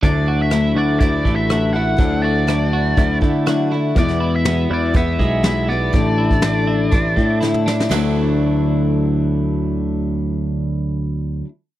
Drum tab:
CC |----------------|----------------|----------------|----------------|
HH |x---x---x---x---|x---x---x---x---|x---x---x---x---|x---x---x-------|
SD |----r-------r---|----r-------r---|-o--o-------o---|----o-------o-oo|
T2 |----------------|----------------|----------------|-------------o--|
BD |o-------o-o-----|o-------o-o-----|o-------o-o-----|o--o----o-o-----|

CC |x---------------|----------------|
HH |----------------|----------------|
SD |o---------------|----------------|
T2 |----------------|----------------|
BD |----------------|----------------|